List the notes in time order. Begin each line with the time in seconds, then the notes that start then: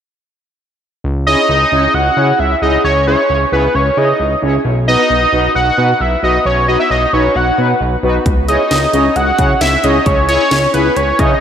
1.04 C#2
1.27 C#4 E4 G#4 C#5 D#5
1.49 C#2
1.72 C#2 C#4 E4 G#4 C#5
1.94 C#2 F#5
2.17 C#3 C#4 E4 G#4 C#5
2.39 C#2 E5
2.62 C#2 C#4 E4 G#4 D#5
2.84 C#2 C#5
3.07 C#4 E4 G#4 C#5
3.30 C#2
3.52 C#2 C#4 E4 G#4 B4 C#5
3.75 C#2 C#5
3.97 C#3 C#4 E4 G#4 C#5 D#5
4.20 C#2
4.42 C#2 C#4 E4 G#4 C#5
4.65 B1
4.88 B3 D#4 F#4 B4 D#5
5.10 B1
5.33 B1 B3 D#4 F#4 B4
5.55 B1 F#5
5.78 B2 B3 D#4 F#4 B4
6.00 B1 E5
6.23 B1 B3 D#4 F#4 B4 D#5
6.45 B1 C#5
6.68 B3 D#4 F#4 B4 D#5
6.80 E5
6.91 B1 D#5
7.13 B1 B3 D#4 F#4 B4 C#5
7.35 B1 F#5
7.58 B2 B3 D#4 F#4 B4
7.81 B1
8.03 B1 B3 D#4 F#4 B4
8.26 C#2, kick, closed hi-hat
8.48 C#4 E4 G#4 C#5 D#5, closed hi-hat
8.71 C#2, snare, closed hi-hat
8.93 C#2 C#4 E4 G#4 C#5, closed hi-hat
9.16 C#2 F#5, closed hi-hat
9.39 C#3 C#4 E4 G#4 C#5, kick, closed hi-hat
9.61 C#2 E5, snare, closed hi-hat
9.84 C#2 C#4 E4 G#4 C#5 D#5, closed hi-hat
10.06 C#2 C#5, kick, closed hi-hat
10.29 C#4 E4 G#4 C#5, closed hi-hat
10.51 C#2, snare, closed hi-hat
10.74 C#2 C#4 E4 G#4 B4 C#5, closed hi-hat
10.96 C#2 C#5, closed hi-hat
11.19 C#3 C#4 E4 G#4 C#5 D#5, kick, closed hi-hat